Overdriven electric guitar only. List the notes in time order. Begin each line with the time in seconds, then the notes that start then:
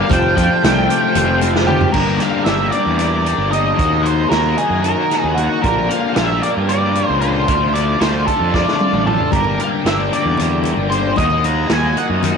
Already playing: D4 G4
0.10 F3
0.36 F3
0.62 A3
0.89 G4
1.15 C4
1.42 F3
1.67 A3
1.92 G2 D3 G3 A#3 D4 G4
2.18 G3 A#3 D4 G4
2.45 G3 A#3 D4 G4
2.72 G2 D3 G3 A#3 D4 G4
2.98 G3 A#3 D4 G4
3.24 G3 A#3 D4 G4
3.51 G2 D3 G3 A#3 D4 G4
3.77 D#3 A#3 D#4 F#4
4.03 A#3 D#4 F#4
4.30 D#3 A#3 D#4 F#4
4.56 D#3 A#3 D#4 F#4
4.82 D#3 A#3 D#4 F#4
5.10 A#3 D#4 F#4
5.35 D#3 A#3 D#4 F#4
5.62 A#2 D3 A#3 D4 F4
5.88 A#3 D4 F4
6.14 D3 A#3 D4 F4
6.41 A#2 D3 A#3 D4 F4
6.67 D3 A#3 D4 F4
6.93 A#3 D4 F4
7.20 A#2 D3 A#3 D4 F4
7.46 D3 A3 D4 F4
7.73 A3 D4 F4
7.99 D3 A3 D4 F4
8.26 D3 A3 D4 F4
8.51 D3 A3 D4 F4
8.79 A3 D4 F4
9.05 D3 A3 D4 F4
9.31 G2 D3 G3 A#3 D4 G4
9.57 G3 A#3 D4 G4
9.85 G3 A#3 D4 G4
10.11 G2 D3 G3 A#3 D4 G4
10.37 G3 A#3 D4 G4
10.64 G3 A#3 D4 G4
10.90 G2 D3 G3 A#3 D4 G4
11.16 D#3 A#3 D#4 F#4
11.42 A#3 D#4 F#4
11.68 D#3 A#3 D#4 F#4
11.95 D#3 A#3 D#4 F#4
12.22 D#3 A#3 D#4 F#4